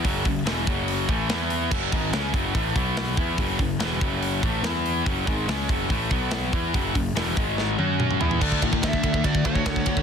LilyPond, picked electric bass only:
\new Staff \with { instrumentName = "Picked electric bass" } { \clef bass \time 4/4 \key fis \minor \tempo 4 = 144 fis,,8 fis,,8 e,,8 fis,,4 a,,8 e,4 | fis,,8 gis,,8 cis,8 fis,,8 a,,8 b,,4 e,8 | fis,,8 fis,,8 e,,8 fis,,4 a,,8 e,4 | fis,,8 gis,,8 cis,8 fis,,8 a,,8 b,,4 e,8 |
fis,,8 fis,,8 e,,8 gis,,4 fis,4 e,8 | \key d \lydian d,8 a,8 d,8 d,8 d,8 d,8 d,8 d,8 | }